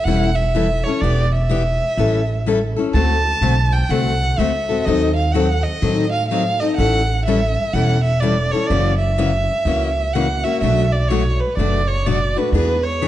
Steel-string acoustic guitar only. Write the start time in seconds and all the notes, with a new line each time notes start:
0.07 E3 G3 C#4 E4 A4
0.55 E3 G3 C#4 E4 A4
0.86 C#4 E4 A4
1.03 E3 B3 D4 G4
1.49 E3 B3 D4 G4
1.98 E3 G3 C#4 E4 A4
2.46 E3 G3 C#4 E4 A4
2.76 C#4 E4 A4
2.94 D3 A3 C4 F#4 A4
3.42 D3 A3 C4 F#4 A4
3.90 D3 A3 C4 F#4 A4
4.39 D3 A3 C4 F#4 A4
4.69 C4 F#4 A4
4.87 D#3 F#3 C4 D#4 A4
5.34 D#3 F#3 C4 D#4 A4
5.82 D#3 F#3 C4 D#4 A4
6.31 D#3 F#3 C4 D#4 A4
6.61 C4 D#4 A4
6.79 E3 G3 C#4 E4 A4
7.27 E3 G3 C#4 E4 A4
7.74 E3 G3 C#4 E4 A4
8.22 E3 G3 C#4 E4 A4
8.53 C#4 E4 A4
8.70 C#3 E3 A#3 C#4 F#4
9.18 C#3 E3 A#3 C#4 F#4
9.66 C#3 E3 A#3 C#4 F#4
10.15 C#3 E3 A#3 C#4 F#4
10.45 A#3 C#4 F#4
10.62 B2 F#3 A3 D4 F#4
11.10 B2 F#3 A3 D4 F#4
11.58 B2 F#3 A3 D4 F#4
12.06 B2 F#3 A3 D4 F#4
12.37 A3 D4 F#4
12.54 E3 B3 D4 G#4
13.02 E3 B3 D4 G#4